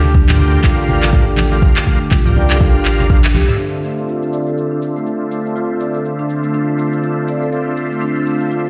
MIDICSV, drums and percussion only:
0, 0, Header, 1, 2, 480
1, 0, Start_track
1, 0, Key_signature, -1, "minor"
1, 0, Tempo, 491803
1, 1583, Time_signature, 4, 2, 24, 8
1, 8488, End_track
2, 0, Start_track
2, 0, Title_t, "Drums"
2, 42, Note_on_c, 9, 64, 85
2, 43, Note_on_c, 9, 69, 35
2, 140, Note_off_c, 9, 64, 0
2, 140, Note_off_c, 9, 69, 0
2, 140, Note_on_c, 9, 62, 38
2, 142, Note_on_c, 9, 36, 109
2, 144, Note_on_c, 9, 69, 51
2, 237, Note_off_c, 9, 62, 0
2, 239, Note_off_c, 9, 36, 0
2, 241, Note_off_c, 9, 69, 0
2, 275, Note_on_c, 9, 63, 96
2, 283, Note_on_c, 9, 39, 92
2, 283, Note_on_c, 9, 45, 99
2, 284, Note_on_c, 9, 69, 36
2, 372, Note_off_c, 9, 63, 0
2, 376, Note_on_c, 9, 63, 59
2, 380, Note_off_c, 9, 39, 0
2, 380, Note_off_c, 9, 45, 0
2, 381, Note_off_c, 9, 69, 0
2, 384, Note_on_c, 9, 69, 86
2, 388, Note_on_c, 9, 64, 107
2, 390, Note_on_c, 9, 62, 58
2, 474, Note_off_c, 9, 63, 0
2, 482, Note_off_c, 9, 69, 0
2, 485, Note_off_c, 9, 64, 0
2, 488, Note_off_c, 9, 62, 0
2, 523, Note_on_c, 9, 69, 39
2, 621, Note_off_c, 9, 69, 0
2, 622, Note_on_c, 9, 36, 113
2, 623, Note_on_c, 9, 39, 79
2, 624, Note_on_c, 9, 69, 52
2, 720, Note_off_c, 9, 36, 0
2, 721, Note_off_c, 9, 39, 0
2, 722, Note_off_c, 9, 69, 0
2, 864, Note_on_c, 9, 69, 90
2, 866, Note_on_c, 9, 64, 106
2, 961, Note_off_c, 9, 69, 0
2, 963, Note_off_c, 9, 64, 0
2, 1003, Note_on_c, 9, 39, 86
2, 1004, Note_on_c, 9, 69, 35
2, 1005, Note_on_c, 9, 62, 57
2, 1100, Note_off_c, 9, 39, 0
2, 1101, Note_off_c, 9, 69, 0
2, 1102, Note_off_c, 9, 62, 0
2, 1102, Note_on_c, 9, 36, 107
2, 1104, Note_on_c, 9, 45, 100
2, 1105, Note_on_c, 9, 69, 47
2, 1200, Note_off_c, 9, 36, 0
2, 1202, Note_off_c, 9, 45, 0
2, 1203, Note_off_c, 9, 69, 0
2, 1246, Note_on_c, 9, 62, 36
2, 1336, Note_on_c, 9, 63, 86
2, 1342, Note_on_c, 9, 64, 93
2, 1343, Note_off_c, 9, 62, 0
2, 1343, Note_on_c, 9, 39, 74
2, 1344, Note_on_c, 9, 69, 82
2, 1434, Note_off_c, 9, 63, 0
2, 1440, Note_off_c, 9, 64, 0
2, 1441, Note_off_c, 9, 39, 0
2, 1442, Note_off_c, 9, 69, 0
2, 1482, Note_on_c, 9, 69, 37
2, 1483, Note_on_c, 9, 62, 52
2, 1579, Note_off_c, 9, 69, 0
2, 1581, Note_off_c, 9, 62, 0
2, 1583, Note_on_c, 9, 36, 112
2, 1584, Note_on_c, 9, 69, 48
2, 1593, Note_on_c, 9, 63, 58
2, 1680, Note_off_c, 9, 36, 0
2, 1682, Note_off_c, 9, 69, 0
2, 1690, Note_off_c, 9, 63, 0
2, 1722, Note_on_c, 9, 39, 94
2, 1723, Note_on_c, 9, 69, 35
2, 1819, Note_on_c, 9, 62, 53
2, 1820, Note_off_c, 9, 39, 0
2, 1821, Note_off_c, 9, 69, 0
2, 1823, Note_on_c, 9, 36, 61
2, 1823, Note_on_c, 9, 69, 86
2, 1917, Note_off_c, 9, 62, 0
2, 1920, Note_off_c, 9, 69, 0
2, 1921, Note_off_c, 9, 36, 0
2, 1963, Note_on_c, 9, 69, 36
2, 2061, Note_off_c, 9, 69, 0
2, 2063, Note_on_c, 9, 36, 110
2, 2063, Note_on_c, 9, 39, 77
2, 2064, Note_on_c, 9, 69, 47
2, 2066, Note_on_c, 9, 62, 39
2, 2161, Note_off_c, 9, 36, 0
2, 2161, Note_off_c, 9, 39, 0
2, 2162, Note_off_c, 9, 69, 0
2, 2164, Note_off_c, 9, 62, 0
2, 2202, Note_on_c, 9, 45, 93
2, 2203, Note_on_c, 9, 69, 35
2, 2208, Note_on_c, 9, 63, 94
2, 2300, Note_off_c, 9, 45, 0
2, 2301, Note_off_c, 9, 69, 0
2, 2303, Note_on_c, 9, 62, 50
2, 2303, Note_on_c, 9, 64, 116
2, 2304, Note_off_c, 9, 63, 0
2, 2304, Note_on_c, 9, 63, 62
2, 2304, Note_on_c, 9, 69, 83
2, 2400, Note_off_c, 9, 64, 0
2, 2401, Note_off_c, 9, 62, 0
2, 2402, Note_off_c, 9, 63, 0
2, 2402, Note_off_c, 9, 69, 0
2, 2443, Note_on_c, 9, 39, 97
2, 2444, Note_on_c, 9, 69, 38
2, 2540, Note_off_c, 9, 39, 0
2, 2541, Note_off_c, 9, 69, 0
2, 2542, Note_on_c, 9, 62, 42
2, 2543, Note_on_c, 9, 36, 120
2, 2545, Note_on_c, 9, 69, 54
2, 2640, Note_off_c, 9, 62, 0
2, 2641, Note_off_c, 9, 36, 0
2, 2643, Note_off_c, 9, 69, 0
2, 2684, Note_on_c, 9, 69, 34
2, 2782, Note_off_c, 9, 69, 0
2, 2785, Note_on_c, 9, 39, 83
2, 2786, Note_on_c, 9, 69, 92
2, 2883, Note_off_c, 9, 39, 0
2, 2883, Note_off_c, 9, 69, 0
2, 2922, Note_on_c, 9, 62, 51
2, 2925, Note_on_c, 9, 69, 34
2, 2928, Note_on_c, 9, 64, 110
2, 3020, Note_off_c, 9, 62, 0
2, 3023, Note_off_c, 9, 69, 0
2, 3023, Note_on_c, 9, 36, 114
2, 3026, Note_off_c, 9, 64, 0
2, 3027, Note_on_c, 9, 69, 50
2, 3121, Note_off_c, 9, 36, 0
2, 3124, Note_off_c, 9, 69, 0
2, 3163, Note_on_c, 9, 62, 35
2, 3166, Note_on_c, 9, 39, 97
2, 3167, Note_on_c, 9, 69, 38
2, 3260, Note_off_c, 9, 62, 0
2, 3263, Note_off_c, 9, 39, 0
2, 3264, Note_off_c, 9, 69, 0
2, 3266, Note_on_c, 9, 63, 90
2, 3266, Note_on_c, 9, 64, 96
2, 3266, Note_on_c, 9, 69, 85
2, 3364, Note_off_c, 9, 63, 0
2, 3364, Note_off_c, 9, 64, 0
2, 3364, Note_off_c, 9, 69, 0
2, 3398, Note_on_c, 9, 62, 49
2, 3405, Note_on_c, 9, 45, 79
2, 3406, Note_on_c, 9, 69, 41
2, 3495, Note_off_c, 9, 62, 0
2, 3502, Note_off_c, 9, 45, 0
2, 3503, Note_off_c, 9, 69, 0
2, 3507, Note_on_c, 9, 69, 50
2, 3605, Note_off_c, 9, 69, 0
2, 3746, Note_on_c, 9, 69, 83
2, 3844, Note_off_c, 9, 69, 0
2, 3885, Note_on_c, 9, 69, 34
2, 3982, Note_off_c, 9, 69, 0
2, 3985, Note_on_c, 9, 69, 47
2, 4082, Note_off_c, 9, 69, 0
2, 4123, Note_on_c, 9, 69, 36
2, 4221, Note_off_c, 9, 69, 0
2, 4224, Note_on_c, 9, 69, 84
2, 4322, Note_off_c, 9, 69, 0
2, 4362, Note_on_c, 9, 69, 36
2, 4460, Note_off_c, 9, 69, 0
2, 4466, Note_on_c, 9, 69, 51
2, 4564, Note_off_c, 9, 69, 0
2, 4705, Note_on_c, 9, 69, 87
2, 4803, Note_off_c, 9, 69, 0
2, 4845, Note_on_c, 9, 69, 37
2, 4943, Note_off_c, 9, 69, 0
2, 4945, Note_on_c, 9, 69, 46
2, 5043, Note_off_c, 9, 69, 0
2, 5186, Note_on_c, 9, 69, 76
2, 5284, Note_off_c, 9, 69, 0
2, 5324, Note_on_c, 9, 69, 37
2, 5422, Note_off_c, 9, 69, 0
2, 5426, Note_on_c, 9, 69, 53
2, 5523, Note_off_c, 9, 69, 0
2, 5664, Note_on_c, 9, 69, 83
2, 5761, Note_off_c, 9, 69, 0
2, 5803, Note_on_c, 9, 69, 35
2, 5901, Note_off_c, 9, 69, 0
2, 5905, Note_on_c, 9, 69, 51
2, 6002, Note_off_c, 9, 69, 0
2, 6043, Note_on_c, 9, 69, 37
2, 6141, Note_off_c, 9, 69, 0
2, 6143, Note_on_c, 9, 69, 83
2, 6241, Note_off_c, 9, 69, 0
2, 6281, Note_on_c, 9, 69, 39
2, 6379, Note_off_c, 9, 69, 0
2, 6383, Note_on_c, 9, 69, 53
2, 6480, Note_off_c, 9, 69, 0
2, 6622, Note_on_c, 9, 69, 90
2, 6720, Note_off_c, 9, 69, 0
2, 6762, Note_on_c, 9, 69, 37
2, 6859, Note_off_c, 9, 69, 0
2, 6863, Note_on_c, 9, 69, 50
2, 6961, Note_off_c, 9, 69, 0
2, 7102, Note_on_c, 9, 69, 86
2, 7200, Note_off_c, 9, 69, 0
2, 7240, Note_on_c, 9, 69, 40
2, 7337, Note_off_c, 9, 69, 0
2, 7341, Note_on_c, 9, 69, 51
2, 7439, Note_off_c, 9, 69, 0
2, 7581, Note_on_c, 9, 69, 91
2, 7679, Note_off_c, 9, 69, 0
2, 7722, Note_on_c, 9, 69, 37
2, 7819, Note_off_c, 9, 69, 0
2, 7823, Note_on_c, 9, 69, 52
2, 7920, Note_off_c, 9, 69, 0
2, 7961, Note_on_c, 9, 69, 37
2, 8058, Note_off_c, 9, 69, 0
2, 8063, Note_on_c, 9, 69, 89
2, 8160, Note_off_c, 9, 69, 0
2, 8202, Note_on_c, 9, 69, 40
2, 8299, Note_off_c, 9, 69, 0
2, 8304, Note_on_c, 9, 69, 52
2, 8401, Note_off_c, 9, 69, 0
2, 8488, End_track
0, 0, End_of_file